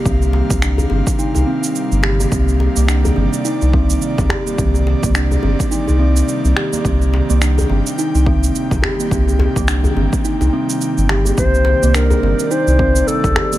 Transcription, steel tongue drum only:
X:1
M:4/4
L:1/16
Q:"Swing 16ths" 1/4=106
K:Cm
V:1 name="Steel tongue drum"
C4 D z C z E E C z3 G B, | C3 B, D z C z E E C z3 G B, | C3 B, D z C z E E C z3 G B, | C3 B, D z C z E E C z3 G B, |
C3 B, D z C z E E C z3 G B, | C3 B, D z C z E E C z3 G B, |]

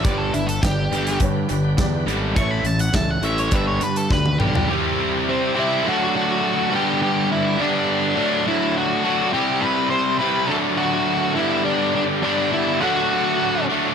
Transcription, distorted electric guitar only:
X:1
M:4/4
L:1/8
Q:1/4=103
K:Glyd
V:1 name="Distorted electric guitar" clef=bass
[G,,D,G,] [G,,D,] [G,,D,] [G,,D,G,] [G,,D,] [G,,D,] [G,,D,] [G,,D,G,] | [A,,E,A,] [A,,E,] [A,,E,] [A,,E,A,] [G,,D,G,] [G,,D,] [G,,D,] [G,,D,G,] | [=C,G,=CEG]3 [C,G,CEG] [D,F,A,D]3 [G,,D,G,B,D]- | [G,,D,G,B,D]2 [G,,D,G,B,D]2 [D,F,A,D]3 [D,F,A,D] |
[=C,G,=CE]3 [C,G,CE] [D,F,A,D]3 [G,,D,G,B,D]- | [G,,D,G,B,D]2 [G,,D,G,B,D]2 [D,F,A,D]3 [D,F,A,D] |]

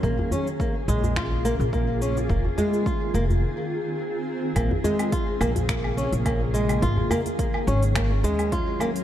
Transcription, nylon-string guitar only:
X:1
M:4/4
L:1/16
Q:"Swing 16ths" 1/4=106
K:Bbm
V:1 name="Nylon-string guitar"
B,2 D z B, z A,2 F2 B,2 B,2 D z | B, z A,2 F2 B,2 z8 | B, z A,2 F2 B,2 B,2 D z B, z A,2 | F2 B,2 B,2 D z B, z A,2 F2 B,2 |]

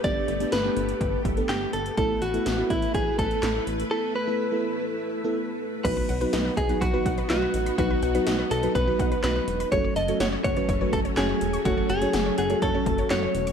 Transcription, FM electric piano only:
X:1
M:4/4
L:1/16
Q:1/4=124
K:Bmix
V:1 name="FM electric piano"
[A,B,=D=G]2 z [A,B,DG] z [A,B,DG]4 z2 [A,B,DA]3 z2 | [A,B,EA]2 z [A,B,EA] z [A,B,EF]4- [A,B,EF] z6 | [A,B,EA]2 z [A,B,EA] z [A,B,EA]4 z2 [A,B,EA]3 z2 | [F,B,DFB]2 z [F,B,DFB]3 z [F,B,DFB] z [F,B,DFB]2 z [F,B,DFB]3 z |
[F,B,DFB]2 z [F,B,DFB]3 z [F,B,DFB] z [F,B,DFB]2 z [F,B,DFB]3 z | [F,A,CFA]2 z [F,A,CFA]3 z [F,A,CFB] z [F,A,CFB]2 z [F,A,CFc]3 z | [F,A,CFA]2 z [F,A,CFc]3 z [F,A,CFA] z [F,A,CFA]2 z [F,A,CFA]3 z |]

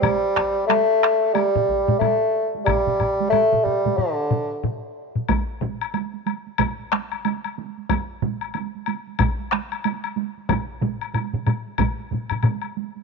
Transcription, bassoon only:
X:1
M:4/4
L:1/16
Q:"Swing 16ths" 1/4=92
K:none
V:1 name="Bassoon" clef=bass
G,4 A,4 G,4 A,3 z | G,4 A,2 G,2 D,4 z4 | z16 | z16 |
z16 |]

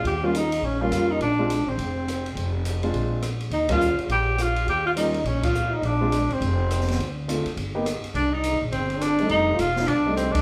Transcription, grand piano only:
X:1
M:4/4
L:1/8
Q:"Swing" 1/4=208
K:Bb
V:1 name="Grand piano"
z [G,B,_DF] z3 [G,B,DF]3 | z [_A,CDF] z6 | z3 [_A,CDF]3 z2 | z [G,B,_DF] z6 |
z2 [G,B,_DF] z4 z | z [_A,CDF] z6 | z2 [A,CDF] z2 [B,=B,^DG] z2 | z6 z [G,A,CE]- |
[G,A,CE]2 z3 [G,A,CE]3 |]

